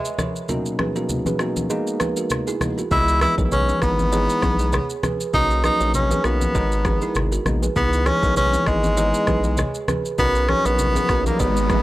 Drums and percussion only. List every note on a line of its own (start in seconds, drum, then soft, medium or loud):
0.05 shaker medium
0.18 cross-stick medium
0.18 high conga medium
0.18 low conga medium
0.18 shaker medium
0.36 shaker medium
0.49 low conga medium
0.49 shaker medium
0.66 shaker medium
0.79 cross-stick medium
0.79 high conga medium
0.96 shaker medium
1.09 low conga medium
1.09 shaker medium
1.26 high conga medium
1.26 shaker medium
1.39 cross-stick medium
1.39 shaker soft
1.56 high conga medium
1.56 shaker soft
1.70 shaker medium
1.87 shaker soft
2.00 cross-stick medium
2.00 high conga medium
2.00 shaker medium
2.17 shaker medium
2.30 cross-stick medium
2.30 low conga medium
2.30 shaker medium
2.47 shaker medium
2.61 cross-stick medium
2.61 high conga medium
2.61 low conga medium
2.61 shaker medium
2.78 shaker medium
2.91 kick medium
2.91 low conga medium
2.91 shaker medium
3.08 shaker medium
3.21 cross-stick medium
3.21 high conga medium
3.21 shaker medium
3.38 kick medium
3.38 shaker medium
3.52 low conga medium
3.52 shaker medium
3.68 high conga medium
3.68 shaker medium
3.82 kick medium
3.82 cross-stick medium
3.82 shaker soft
3.99 high conga medium
3.99 shaker soft
4.12 shaker medium
4.29 shaker soft
4.42 kick medium
4.42 cross-stick medium
4.42 high conga medium
4.42 shaker medium
4.59 shaker medium
4.72 cross-stick loud
4.72 low conga medium
4.72 shaker medium
4.90 shaker medium
5.03 cross-stick medium
5.03 high conga medium
5.03 low conga medium
5.03 shaker medium
5.21 shaker medium
5.34 kick medium
5.34 low conga medium
5.34 shaker medium
5.51 shaker medium
5.64 cross-stick loud
5.64 high conga medium
5.64 shaker medium
5.81 shaker medium
5.94 low conga medium
5.94 shaker medium
6.11 high conga medium
6.11 shaker medium
6.24 cross-stick medium
6.24 shaker soft
6.41 high conga medium
6.41 shaker soft
6.55 kick medium
6.55 shaker medium
6.72 shaker medium
6.85 kick medium
6.85 cross-stick medium
6.85 high conga medium
6.85 shaker medium
7.01 shaker medium
7.15 cross-stick loud
7.15 low conga medium
7.15 shaker medium
7.32 shaker medium
7.46 cross-stick medium
7.46 high conga medium
7.46 low conga medium
7.46 shaker medium
7.63 shaker medium
7.76 kick loud
7.76 low conga medium
7.76 shaker medium
7.93 shaker medium
8.06 cross-stick loud
8.06 high conga medium
8.06 shaker medium
8.23 kick medium
8.23 shaker medium
8.36 low conga medium
8.36 shaker medium
8.53 high conga medium
8.53 shaker medium
8.66 kick medium
8.66 cross-stick medium
8.66 shaker soft
8.84 high conga medium
8.84 shaker soft
8.97 shaker medium
9.14 shaker soft
9.27 kick medium
9.27 cross-stick medium
9.27 high conga medium
9.27 shaker medium
9.44 shaker medium
9.57 cross-stick medium
9.57 low conga medium
9.57 shaker medium
9.75 shaker medium
9.88 cross-stick medium
9.88 high conga medium
9.88 low conga medium
9.88 shaker medium
10.05 shaker medium
10.18 kick loud
10.18 low conga medium
10.18 shaker medium
10.35 shaker medium
10.49 cross-stick medium
10.49 high conga medium
10.65 shaker medium
10.79 low conga medium
10.79 shaker medium
10.95 high conga medium
10.95 shaker medium
11.09 kick medium
11.09 cross-stick medium
11.09 shaker soft
11.26 high conga medium
11.26 shaker soft
11.40 kick medium
11.40 shaker medium
11.57 shaker soft
11.70 kick medium
11.70 cross-stick medium
11.70 high conga medium
11.70 shaker medium